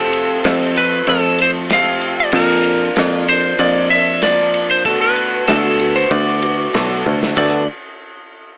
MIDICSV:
0, 0, Header, 1, 5, 480
1, 0, Start_track
1, 0, Tempo, 628931
1, 1784, Time_signature, 4, 2, 24, 8
1, 6544, End_track
2, 0, Start_track
2, 0, Title_t, "Lead electric guitar"
2, 0, Program_c, 0, 29
2, 0, Note_on_c, 0, 69, 86
2, 589, Note_off_c, 0, 69, 0
2, 592, Note_on_c, 0, 71, 100
2, 832, Note_off_c, 0, 71, 0
2, 835, Note_on_c, 0, 69, 94
2, 1076, Note_off_c, 0, 69, 0
2, 1082, Note_on_c, 0, 72, 99
2, 1144, Note_off_c, 0, 72, 0
2, 1320, Note_on_c, 0, 77, 105
2, 1677, Note_off_c, 0, 77, 0
2, 1680, Note_on_c, 0, 74, 91
2, 1784, Note_off_c, 0, 74, 0
2, 1797, Note_on_c, 0, 70, 90
2, 2509, Note_off_c, 0, 70, 0
2, 2512, Note_on_c, 0, 72, 93
2, 2732, Note_off_c, 0, 72, 0
2, 2745, Note_on_c, 0, 74, 101
2, 2976, Note_off_c, 0, 74, 0
2, 2980, Note_on_c, 0, 76, 102
2, 3228, Note_off_c, 0, 76, 0
2, 3231, Note_on_c, 0, 74, 94
2, 3563, Note_off_c, 0, 74, 0
2, 3593, Note_on_c, 0, 72, 83
2, 3703, Note_off_c, 0, 72, 0
2, 3706, Note_on_c, 0, 69, 87
2, 3824, Note_off_c, 0, 69, 0
2, 3827, Note_on_c, 0, 71, 86
2, 4179, Note_off_c, 0, 71, 0
2, 4182, Note_on_c, 0, 69, 83
2, 4545, Note_on_c, 0, 72, 84
2, 4554, Note_off_c, 0, 69, 0
2, 4666, Note_off_c, 0, 72, 0
2, 4666, Note_on_c, 0, 74, 82
2, 5385, Note_off_c, 0, 74, 0
2, 5630, Note_on_c, 0, 74, 84
2, 5851, Note_off_c, 0, 74, 0
2, 6544, End_track
3, 0, Start_track
3, 0, Title_t, "Twelve-string acoustic guitar"
3, 0, Program_c, 1, 25
3, 0, Note_on_c, 1, 41, 73
3, 0, Note_on_c, 1, 48, 74
3, 0, Note_on_c, 1, 53, 86
3, 0, Note_on_c, 1, 57, 79
3, 0, Note_on_c, 1, 60, 84
3, 0, Note_on_c, 1, 65, 91
3, 329, Note_off_c, 1, 41, 0
3, 336, Note_off_c, 1, 48, 0
3, 338, Note_on_c, 1, 41, 81
3, 343, Note_off_c, 1, 57, 0
3, 345, Note_off_c, 1, 53, 0
3, 345, Note_on_c, 1, 48, 80
3, 346, Note_off_c, 1, 60, 0
3, 348, Note_on_c, 1, 53, 86
3, 354, Note_off_c, 1, 65, 0
3, 354, Note_on_c, 1, 57, 86
3, 354, Note_on_c, 1, 60, 88
3, 357, Note_on_c, 1, 65, 89
3, 568, Note_off_c, 1, 65, 0
3, 577, Note_on_c, 1, 65, 58
3, 579, Note_off_c, 1, 60, 0
3, 581, Note_off_c, 1, 41, 0
3, 584, Note_off_c, 1, 48, 0
3, 585, Note_off_c, 1, 53, 0
3, 587, Note_off_c, 1, 57, 0
3, 588, Note_on_c, 1, 60, 55
3, 596, Note_on_c, 1, 57, 55
3, 604, Note_on_c, 1, 53, 47
3, 804, Note_off_c, 1, 53, 0
3, 813, Note_on_c, 1, 53, 64
3, 815, Note_off_c, 1, 57, 0
3, 820, Note_off_c, 1, 65, 0
3, 824, Note_on_c, 1, 57, 60
3, 826, Note_off_c, 1, 60, 0
3, 834, Note_on_c, 1, 60, 58
3, 842, Note_on_c, 1, 65, 72
3, 1051, Note_off_c, 1, 65, 0
3, 1058, Note_off_c, 1, 53, 0
3, 1060, Note_on_c, 1, 65, 55
3, 1062, Note_off_c, 1, 60, 0
3, 1064, Note_off_c, 1, 57, 0
3, 1071, Note_on_c, 1, 60, 49
3, 1081, Note_on_c, 1, 57, 50
3, 1087, Note_on_c, 1, 53, 47
3, 1301, Note_off_c, 1, 53, 0
3, 1302, Note_off_c, 1, 65, 0
3, 1303, Note_on_c, 1, 41, 84
3, 1305, Note_off_c, 1, 57, 0
3, 1307, Note_on_c, 1, 48, 85
3, 1308, Note_off_c, 1, 60, 0
3, 1311, Note_on_c, 1, 53, 90
3, 1314, Note_on_c, 1, 57, 90
3, 1315, Note_on_c, 1, 60, 93
3, 1319, Note_on_c, 1, 65, 91
3, 1777, Note_off_c, 1, 53, 0
3, 1783, Note_off_c, 1, 41, 0
3, 1786, Note_off_c, 1, 48, 0
3, 1786, Note_on_c, 1, 53, 81
3, 1788, Note_off_c, 1, 57, 0
3, 1790, Note_off_c, 1, 60, 0
3, 1791, Note_on_c, 1, 58, 83
3, 1792, Note_off_c, 1, 65, 0
3, 1795, Note_on_c, 1, 62, 89
3, 1801, Note_on_c, 1, 65, 83
3, 2247, Note_off_c, 1, 53, 0
3, 2254, Note_off_c, 1, 58, 0
3, 2256, Note_on_c, 1, 53, 82
3, 2264, Note_on_c, 1, 58, 86
3, 2265, Note_off_c, 1, 62, 0
3, 2266, Note_off_c, 1, 65, 0
3, 2268, Note_on_c, 1, 62, 86
3, 2275, Note_on_c, 1, 65, 94
3, 2491, Note_off_c, 1, 65, 0
3, 2500, Note_off_c, 1, 53, 0
3, 2500, Note_on_c, 1, 65, 61
3, 2504, Note_off_c, 1, 58, 0
3, 2504, Note_off_c, 1, 62, 0
3, 2513, Note_on_c, 1, 62, 57
3, 2528, Note_on_c, 1, 58, 46
3, 2742, Note_off_c, 1, 65, 0
3, 2749, Note_off_c, 1, 62, 0
3, 2751, Note_off_c, 1, 58, 0
3, 2753, Note_on_c, 1, 53, 58
3, 2760, Note_on_c, 1, 58, 64
3, 2770, Note_on_c, 1, 62, 66
3, 2779, Note_on_c, 1, 65, 64
3, 2974, Note_off_c, 1, 65, 0
3, 2984, Note_on_c, 1, 65, 55
3, 2989, Note_off_c, 1, 53, 0
3, 2989, Note_off_c, 1, 62, 0
3, 2993, Note_off_c, 1, 58, 0
3, 2998, Note_on_c, 1, 62, 55
3, 3013, Note_on_c, 1, 58, 44
3, 3217, Note_off_c, 1, 58, 0
3, 3218, Note_on_c, 1, 53, 83
3, 3221, Note_off_c, 1, 62, 0
3, 3224, Note_off_c, 1, 65, 0
3, 3227, Note_on_c, 1, 58, 78
3, 3230, Note_on_c, 1, 62, 85
3, 3240, Note_on_c, 1, 65, 88
3, 3697, Note_off_c, 1, 53, 0
3, 3700, Note_on_c, 1, 50, 84
3, 3705, Note_off_c, 1, 58, 0
3, 3708, Note_on_c, 1, 57, 89
3, 3710, Note_off_c, 1, 62, 0
3, 3712, Note_off_c, 1, 65, 0
3, 3713, Note_on_c, 1, 59, 89
3, 3716, Note_on_c, 1, 66, 83
3, 4170, Note_off_c, 1, 50, 0
3, 4177, Note_off_c, 1, 57, 0
3, 4179, Note_on_c, 1, 50, 74
3, 4186, Note_off_c, 1, 59, 0
3, 4186, Note_on_c, 1, 57, 76
3, 4189, Note_off_c, 1, 66, 0
3, 4195, Note_on_c, 1, 59, 86
3, 4198, Note_on_c, 1, 66, 94
3, 4410, Note_off_c, 1, 66, 0
3, 4419, Note_on_c, 1, 66, 62
3, 4422, Note_off_c, 1, 50, 0
3, 4424, Note_off_c, 1, 59, 0
3, 4426, Note_off_c, 1, 57, 0
3, 4433, Note_on_c, 1, 59, 52
3, 4445, Note_on_c, 1, 57, 46
3, 4662, Note_off_c, 1, 66, 0
3, 4663, Note_off_c, 1, 57, 0
3, 4664, Note_on_c, 1, 50, 58
3, 4669, Note_off_c, 1, 59, 0
3, 4672, Note_on_c, 1, 57, 60
3, 4681, Note_on_c, 1, 59, 63
3, 4689, Note_on_c, 1, 66, 65
3, 4888, Note_off_c, 1, 66, 0
3, 4897, Note_on_c, 1, 66, 55
3, 4902, Note_off_c, 1, 59, 0
3, 4904, Note_off_c, 1, 50, 0
3, 4909, Note_off_c, 1, 57, 0
3, 4912, Note_on_c, 1, 59, 48
3, 4924, Note_on_c, 1, 57, 42
3, 5133, Note_off_c, 1, 57, 0
3, 5135, Note_on_c, 1, 50, 78
3, 5140, Note_off_c, 1, 59, 0
3, 5141, Note_off_c, 1, 66, 0
3, 5142, Note_on_c, 1, 57, 80
3, 5150, Note_on_c, 1, 59, 82
3, 5156, Note_on_c, 1, 66, 83
3, 5601, Note_off_c, 1, 50, 0
3, 5604, Note_off_c, 1, 57, 0
3, 5610, Note_on_c, 1, 50, 85
3, 5612, Note_off_c, 1, 59, 0
3, 5613, Note_on_c, 1, 57, 79
3, 5619, Note_off_c, 1, 66, 0
3, 5621, Note_on_c, 1, 59, 85
3, 5628, Note_on_c, 1, 66, 84
3, 5809, Note_off_c, 1, 50, 0
3, 5811, Note_off_c, 1, 57, 0
3, 5815, Note_off_c, 1, 59, 0
3, 5818, Note_off_c, 1, 66, 0
3, 6544, End_track
4, 0, Start_track
4, 0, Title_t, "Picked electric bass"
4, 0, Program_c, 2, 34
4, 0, Note_on_c, 2, 41, 109
4, 284, Note_off_c, 2, 41, 0
4, 344, Note_on_c, 2, 41, 100
4, 767, Note_off_c, 2, 41, 0
4, 820, Note_on_c, 2, 41, 107
4, 1669, Note_off_c, 2, 41, 0
4, 1779, Note_on_c, 2, 41, 116
4, 2205, Note_off_c, 2, 41, 0
4, 2276, Note_on_c, 2, 41, 104
4, 2694, Note_off_c, 2, 41, 0
4, 2742, Note_on_c, 2, 41, 110
4, 3705, Note_off_c, 2, 41, 0
4, 3705, Note_on_c, 2, 38, 109
4, 4128, Note_off_c, 2, 38, 0
4, 4192, Note_on_c, 2, 38, 105
4, 4612, Note_off_c, 2, 38, 0
4, 4662, Note_on_c, 2, 38, 109
4, 5087, Note_off_c, 2, 38, 0
4, 5148, Note_on_c, 2, 35, 89
4, 5362, Note_off_c, 2, 35, 0
4, 5392, Note_on_c, 2, 38, 84
4, 5605, Note_off_c, 2, 38, 0
4, 5625, Note_on_c, 2, 38, 101
4, 5848, Note_off_c, 2, 38, 0
4, 6544, End_track
5, 0, Start_track
5, 0, Title_t, "Drums"
5, 98, Note_on_c, 9, 51, 81
5, 175, Note_off_c, 9, 51, 0
5, 336, Note_on_c, 9, 51, 110
5, 343, Note_on_c, 9, 38, 125
5, 412, Note_off_c, 9, 51, 0
5, 419, Note_off_c, 9, 38, 0
5, 580, Note_on_c, 9, 51, 82
5, 656, Note_off_c, 9, 51, 0
5, 815, Note_on_c, 9, 51, 105
5, 818, Note_on_c, 9, 36, 87
5, 891, Note_off_c, 9, 51, 0
5, 895, Note_off_c, 9, 36, 0
5, 1057, Note_on_c, 9, 51, 83
5, 1133, Note_off_c, 9, 51, 0
5, 1294, Note_on_c, 9, 51, 101
5, 1301, Note_on_c, 9, 38, 119
5, 1371, Note_off_c, 9, 51, 0
5, 1378, Note_off_c, 9, 38, 0
5, 1536, Note_on_c, 9, 51, 75
5, 1612, Note_off_c, 9, 51, 0
5, 1770, Note_on_c, 9, 49, 108
5, 1777, Note_on_c, 9, 36, 119
5, 1846, Note_off_c, 9, 49, 0
5, 1854, Note_off_c, 9, 36, 0
5, 2015, Note_on_c, 9, 51, 74
5, 2091, Note_off_c, 9, 51, 0
5, 2258, Note_on_c, 9, 51, 103
5, 2265, Note_on_c, 9, 38, 124
5, 2334, Note_off_c, 9, 51, 0
5, 2341, Note_off_c, 9, 38, 0
5, 2504, Note_on_c, 9, 51, 77
5, 2580, Note_off_c, 9, 51, 0
5, 2740, Note_on_c, 9, 36, 92
5, 2740, Note_on_c, 9, 51, 102
5, 2816, Note_off_c, 9, 51, 0
5, 2817, Note_off_c, 9, 36, 0
5, 2979, Note_on_c, 9, 51, 79
5, 3056, Note_off_c, 9, 51, 0
5, 3219, Note_on_c, 9, 51, 100
5, 3226, Note_on_c, 9, 38, 113
5, 3295, Note_off_c, 9, 51, 0
5, 3302, Note_off_c, 9, 38, 0
5, 3463, Note_on_c, 9, 51, 81
5, 3540, Note_off_c, 9, 51, 0
5, 3702, Note_on_c, 9, 36, 117
5, 3703, Note_on_c, 9, 51, 108
5, 3779, Note_off_c, 9, 36, 0
5, 3780, Note_off_c, 9, 51, 0
5, 3938, Note_on_c, 9, 51, 83
5, 4015, Note_off_c, 9, 51, 0
5, 4179, Note_on_c, 9, 51, 111
5, 4186, Note_on_c, 9, 38, 117
5, 4255, Note_off_c, 9, 51, 0
5, 4262, Note_off_c, 9, 38, 0
5, 4424, Note_on_c, 9, 51, 81
5, 4500, Note_off_c, 9, 51, 0
5, 4663, Note_on_c, 9, 36, 88
5, 4663, Note_on_c, 9, 51, 113
5, 4739, Note_off_c, 9, 51, 0
5, 4740, Note_off_c, 9, 36, 0
5, 4901, Note_on_c, 9, 51, 82
5, 4977, Note_off_c, 9, 51, 0
5, 5144, Note_on_c, 9, 51, 107
5, 5151, Note_on_c, 9, 38, 110
5, 5220, Note_off_c, 9, 51, 0
5, 5227, Note_off_c, 9, 38, 0
5, 5389, Note_on_c, 9, 48, 67
5, 5465, Note_off_c, 9, 48, 0
5, 5516, Note_on_c, 9, 38, 101
5, 5593, Note_off_c, 9, 38, 0
5, 5624, Note_on_c, 9, 36, 117
5, 5626, Note_on_c, 9, 57, 90
5, 5701, Note_off_c, 9, 36, 0
5, 5702, Note_off_c, 9, 57, 0
5, 6544, End_track
0, 0, End_of_file